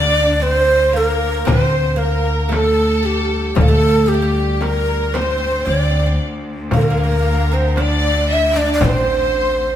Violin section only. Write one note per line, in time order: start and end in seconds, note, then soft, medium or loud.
0.00 0.32 D5 medium
0.35 0.42 D5 medium
0.42 0.95 C5 medium
0.94 1.47 A#4 medium
1.46 1.96 C5 medium
1.99 2.52 A#4 medium
2.52 3.57 A4 medium
3.58 4.06 A4 medium
4.11 4.62 G4 medium
4.62 5.14 A#4 medium
5.15 5.67 C5 medium
5.68 6.20 D5 medium
6.73 7.73 A#4 medium
7.78 8.30 D5 medium
8.29 8.55 E5 medium
8.55 8.81 D5 medium
8.80 9.76 C5 medium